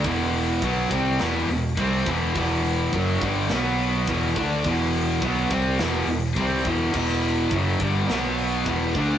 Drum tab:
CC |--------|--------|--------|x-------|
HH |oooooooo|oooooooo|oooooooo|-ooooooo|
SD |----o---|----o---|----o---|----o---|
BD |o-oo--oo|o-oo--oo|o-oo--oo|o-oo--oo|